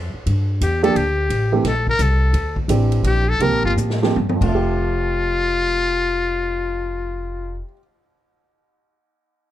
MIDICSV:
0, 0, Header, 1, 6, 480
1, 0, Start_track
1, 0, Key_signature, -1, "major"
1, 0, Tempo, 346620
1, 361, Time_signature, 3, 2, 24, 8
1, 3722, Tempo, 361011
1, 5162, Tempo, 391389
1, 6122, Tempo, 408163
1, 11953, End_track
2, 0, Start_track
2, 0, Title_t, "Muted trumpet"
2, 0, Program_c, 0, 59
2, 873, Note_on_c, 0, 67, 71
2, 1146, Note_off_c, 0, 67, 0
2, 1161, Note_on_c, 0, 69, 86
2, 1337, Note_on_c, 0, 67, 73
2, 1358, Note_off_c, 0, 69, 0
2, 2118, Note_off_c, 0, 67, 0
2, 2312, Note_on_c, 0, 69, 75
2, 2585, Note_off_c, 0, 69, 0
2, 2622, Note_on_c, 0, 70, 97
2, 2798, Note_on_c, 0, 69, 76
2, 2819, Note_off_c, 0, 70, 0
2, 3569, Note_off_c, 0, 69, 0
2, 4224, Note_on_c, 0, 67, 78
2, 4522, Note_on_c, 0, 69, 87
2, 4542, Note_off_c, 0, 67, 0
2, 4696, Note_on_c, 0, 70, 87
2, 4716, Note_off_c, 0, 69, 0
2, 4999, Note_off_c, 0, 70, 0
2, 5009, Note_on_c, 0, 65, 84
2, 5108, Note_off_c, 0, 65, 0
2, 5964, Note_on_c, 0, 65, 92
2, 9716, Note_off_c, 0, 65, 0
2, 11953, End_track
3, 0, Start_track
3, 0, Title_t, "Grand piano"
3, 0, Program_c, 1, 0
3, 1144, Note_on_c, 1, 53, 68
3, 1149, Note_on_c, 1, 58, 66
3, 1155, Note_on_c, 1, 62, 66
3, 1156, Note_on_c, 1, 67, 85
3, 1301, Note_off_c, 1, 53, 0
3, 1303, Note_off_c, 1, 58, 0
3, 1306, Note_off_c, 1, 62, 0
3, 1307, Note_off_c, 1, 67, 0
3, 2106, Note_on_c, 1, 57, 55
3, 2107, Note_on_c, 1, 52, 68
3, 2115, Note_on_c, 1, 60, 56
3, 2118, Note_on_c, 1, 67, 72
3, 2261, Note_off_c, 1, 57, 0
3, 2262, Note_off_c, 1, 52, 0
3, 2266, Note_off_c, 1, 60, 0
3, 2268, Note_off_c, 1, 67, 0
3, 3726, Note_on_c, 1, 52, 56
3, 3732, Note_on_c, 1, 60, 53
3, 3734, Note_on_c, 1, 62, 48
3, 3739, Note_on_c, 1, 67, 59
3, 4439, Note_off_c, 1, 52, 0
3, 4441, Note_off_c, 1, 60, 0
3, 4443, Note_off_c, 1, 62, 0
3, 4445, Note_off_c, 1, 67, 0
3, 4677, Note_on_c, 1, 53, 53
3, 4682, Note_on_c, 1, 58, 51
3, 4688, Note_on_c, 1, 60, 46
3, 4690, Note_on_c, 1, 67, 59
3, 5406, Note_off_c, 1, 53, 0
3, 5408, Note_off_c, 1, 58, 0
3, 5411, Note_off_c, 1, 60, 0
3, 5412, Note_off_c, 1, 67, 0
3, 5472, Note_on_c, 1, 53, 60
3, 5474, Note_on_c, 1, 58, 60
3, 5480, Note_on_c, 1, 60, 57
3, 5482, Note_on_c, 1, 67, 70
3, 5620, Note_off_c, 1, 53, 0
3, 5621, Note_off_c, 1, 58, 0
3, 5624, Note_off_c, 1, 60, 0
3, 5625, Note_off_c, 1, 67, 0
3, 5804, Note_on_c, 1, 41, 59
3, 5888, Note_on_c, 1, 53, 53
3, 5964, Note_on_c, 1, 57, 49
3, 6036, Note_on_c, 1, 76, 54
3, 6116, Note_on_c, 1, 67, 64
3, 9609, Note_off_c, 1, 41, 0
3, 9690, Note_off_c, 1, 53, 0
3, 9763, Note_off_c, 1, 57, 0
3, 9832, Note_off_c, 1, 76, 0
3, 9909, Note_off_c, 1, 67, 0
3, 11953, End_track
4, 0, Start_track
4, 0, Title_t, "Upright bass"
4, 0, Program_c, 2, 32
4, 0, Note_on_c, 2, 41, 82
4, 168, Note_off_c, 2, 41, 0
4, 366, Note_on_c, 2, 43, 78
4, 829, Note_off_c, 2, 43, 0
4, 846, Note_on_c, 2, 40, 79
4, 1309, Note_off_c, 2, 40, 0
4, 1322, Note_on_c, 2, 38, 84
4, 1787, Note_off_c, 2, 38, 0
4, 1797, Note_on_c, 2, 33, 74
4, 2264, Note_off_c, 2, 33, 0
4, 2277, Note_on_c, 2, 34, 72
4, 2744, Note_off_c, 2, 34, 0
4, 2756, Note_on_c, 2, 36, 78
4, 3224, Note_off_c, 2, 36, 0
4, 3231, Note_on_c, 2, 38, 72
4, 3703, Note_off_c, 2, 38, 0
4, 3715, Note_on_c, 2, 33, 80
4, 4173, Note_off_c, 2, 33, 0
4, 4182, Note_on_c, 2, 34, 83
4, 4651, Note_off_c, 2, 34, 0
4, 4662, Note_on_c, 2, 36, 70
4, 4821, Note_off_c, 2, 36, 0
4, 4821, Note_on_c, 2, 34, 51
4, 4980, Note_off_c, 2, 34, 0
4, 4988, Note_on_c, 2, 31, 60
4, 5146, Note_off_c, 2, 31, 0
4, 5160, Note_on_c, 2, 45, 78
4, 5617, Note_off_c, 2, 45, 0
4, 5635, Note_on_c, 2, 43, 74
4, 5937, Note_off_c, 2, 43, 0
4, 5947, Note_on_c, 2, 29, 79
4, 9700, Note_off_c, 2, 29, 0
4, 11953, End_track
5, 0, Start_track
5, 0, Title_t, "Muted upright bass strokes"
5, 192, Note_on_c, 9, 29, 34
5, 331, Note_off_c, 9, 29, 0
5, 11953, End_track
6, 0, Start_track
6, 0, Title_t, "Drums"
6, 367, Note_on_c, 9, 51, 55
6, 505, Note_off_c, 9, 51, 0
6, 850, Note_on_c, 9, 44, 60
6, 850, Note_on_c, 9, 51, 64
6, 989, Note_off_c, 9, 44, 0
6, 989, Note_off_c, 9, 51, 0
6, 1159, Note_on_c, 9, 51, 44
6, 1298, Note_off_c, 9, 51, 0
6, 1330, Note_on_c, 9, 51, 57
6, 1468, Note_off_c, 9, 51, 0
6, 1804, Note_on_c, 9, 51, 61
6, 1942, Note_off_c, 9, 51, 0
6, 2277, Note_on_c, 9, 38, 36
6, 2280, Note_on_c, 9, 51, 57
6, 2416, Note_off_c, 9, 38, 0
6, 2418, Note_off_c, 9, 51, 0
6, 2589, Note_on_c, 9, 36, 50
6, 2727, Note_off_c, 9, 36, 0
6, 2756, Note_on_c, 9, 44, 64
6, 2756, Note_on_c, 9, 51, 62
6, 2895, Note_off_c, 9, 44, 0
6, 2895, Note_off_c, 9, 51, 0
6, 3238, Note_on_c, 9, 51, 58
6, 3376, Note_off_c, 9, 51, 0
6, 3549, Note_on_c, 9, 36, 48
6, 3687, Note_off_c, 9, 36, 0
6, 3725, Note_on_c, 9, 44, 52
6, 3725, Note_on_c, 9, 51, 65
6, 3858, Note_off_c, 9, 44, 0
6, 3858, Note_off_c, 9, 51, 0
6, 4028, Note_on_c, 9, 51, 41
6, 4161, Note_off_c, 9, 51, 0
6, 4195, Note_on_c, 9, 51, 57
6, 4328, Note_off_c, 9, 51, 0
6, 4672, Note_on_c, 9, 51, 55
6, 4805, Note_off_c, 9, 51, 0
6, 5167, Note_on_c, 9, 44, 64
6, 5290, Note_off_c, 9, 44, 0
6, 5321, Note_on_c, 9, 38, 44
6, 5444, Note_off_c, 9, 38, 0
6, 5481, Note_on_c, 9, 38, 62
6, 5603, Note_off_c, 9, 38, 0
6, 5639, Note_on_c, 9, 48, 54
6, 5762, Note_off_c, 9, 48, 0
6, 5802, Note_on_c, 9, 48, 59
6, 5924, Note_off_c, 9, 48, 0
6, 5947, Note_on_c, 9, 36, 48
6, 5953, Note_on_c, 9, 49, 53
6, 6069, Note_off_c, 9, 36, 0
6, 6076, Note_off_c, 9, 49, 0
6, 11953, End_track
0, 0, End_of_file